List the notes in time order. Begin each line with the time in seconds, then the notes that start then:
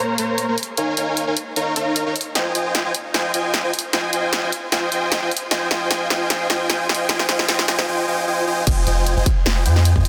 0.00 A#3 A#4 C5 C#5 A#5
0.18 A#3 A#4 C5 C#5 A#5, closed hi-hat
0.38 closed hi-hat
0.48 A#3 A#4 C5 C#5 A#5
0.58 closed hi-hat
0.63 closed hi-hat
0.77 D#4 A#4 C#5 F5 G#5, closed hi-hat
0.97 D#4 A#4 C#5 F5 G#5, closed hi-hat
1.17 closed hi-hat
1.27 D#4 A#4 C#5 F5 G#5
1.37 closed hi-hat
1.56 D#4 A#4 C#5 F5 A#5, closed hi-hat
1.76 D#4 A#4 C#5 F5 A#5, closed hi-hat
1.96 closed hi-hat
2.06 D#4 A#4 C#5 F5 A#5
2.16 closed hi-hat
2.21 closed hi-hat
2.35 F4 C5 D#5 G5 G#5, snare, closed hi-hat
2.55 F4 C5 D#5 G5 G#5, closed hi-hat
2.75 snare, closed hi-hat
2.85 F4 C5 D#5 G5 G#5
2.95 closed hi-hat
3.14 F4 C5 D#5 G5 G#5, snare, closed hi-hat
3.34 F4 C5 D#5 G5 G#5, closed hi-hat
3.54 snare, closed hi-hat
3.64 F4 C5 D#5 G5 G#5
3.73 closed hi-hat
3.79 closed hi-hat
3.93 F4 C5 D#5 G5 G#5, snare, closed hi-hat
4.13 F4 C5 D#5 G5 G#5, closed hi-hat
4.33 snare, closed hi-hat
4.43 F4 C5 D#5 G5 G#5
4.52 closed hi-hat
4.72 F4 C5 D#5 G5 G#5, snare, closed hi-hat
4.92 F4 C5 D#5 G5 G#5, closed hi-hat
5.12 snare, closed hi-hat
5.22 F4 C5 D#5 G5 G#5
5.31 closed hi-hat
5.37 closed hi-hat
5.51 F4 C5 D#5 G5 G#5, snare, closed hi-hat
5.71 F4 C5 D#5 G5 G#5, snare, closed hi-hat
5.91 F4 C5 D#5 G5 G#5, snare, closed hi-hat
6.10 F4 C5 D#5 G5 G#5, snare, closed hi-hat
6.30 F4 C5 D#5 G5 G#5, snare, closed hi-hat
6.50 F4 C5 D#5 G5 G#5, snare, closed hi-hat
6.69 F4 C5 D#5 G5 G#5, snare, closed hi-hat
6.89 F4 C5 D#5 G5 G#5, snare, closed hi-hat
6.95 closed hi-hat
7.09 F4 C5 D#5 G5 G#5, snare, closed hi-hat
7.19 snare
7.29 F4 C5 D#5 G5 G#5, snare, closed hi-hat
7.39 snare
7.48 F4 C5 D#5 G5 G#5, snare, closed hi-hat
7.59 snare
7.68 F4 C5 D#5 G5 G#5, snare, closed hi-hat
7.79 snare
7.88 F4 C5 D#5 G5 G#5
8.08 F4 C5 D#5 G5 G#5
8.27 F4 C5 D#5 G5 G#5
8.47 F4 C5 D#5 G5 G#5
8.67 F1 F4 C5 D#5 G5 G#5, kick, closed hi-hat, crash
8.86 F1 F4 C5 D#5 G5 G#5, closed hi-hat
9.06 closed hi-hat
9.17 F1 F4 C5 D#5 G5 G#5
9.26 kick, closed hi-hat
9.46 F1 F4 C5 D#5 G5 G#5, snare, closed hi-hat
9.65 F2 F4 C5 D#5 G5 G#5, closed hi-hat
9.76 snare
9.85 closed hi-hat
9.96 F2 F4 C5 D#5 G5 G#5, kick
10.05 closed hi-hat